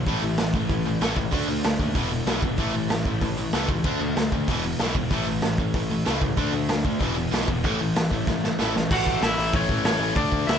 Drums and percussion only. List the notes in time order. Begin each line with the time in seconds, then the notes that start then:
0.06 kick, open hi-hat
0.37 snare, open hi-hat
0.54 kick
0.69 kick, open hi-hat
1.01 snare, open hi-hat
1.17 kick
1.33 kick, open hi-hat
1.64 snare, open hi-hat
1.80 kick
1.95 kick, open hi-hat
2.27 snare, open hi-hat
2.43 kick
2.58 kick, open hi-hat
2.90 snare, open hi-hat
3.05 kick
3.21 kick, open hi-hat
3.53 snare, open hi-hat
3.69 kick
3.84 kick, crash
4.16 snare, open hi-hat
4.32 kick
4.48 kick, open hi-hat
4.79 snare, open hi-hat
4.95 kick
5.10 kick, open hi-hat
5.42 snare, open hi-hat
5.58 kick
5.74 kick, open hi-hat
6.06 snare, open hi-hat
6.22 kick
6.37 kick, open hi-hat
6.69 snare, open hi-hat
6.85 kick
7.01 kick, open hi-hat
7.33 snare, open hi-hat
7.48 kick
7.64 kick, open hi-hat
7.96 snare, open hi-hat
8.11 kick
8.27 kick, snare
8.44 snare
8.59 snare
8.76 snare
8.91 kick, crash
9.07 kick
9.22 snare, open hi-hat
9.54 kick, open hi-hat
9.69 kick
9.85 snare, open hi-hat
10.16 kick, open hi-hat
10.32 kick
10.49 snare, open hi-hat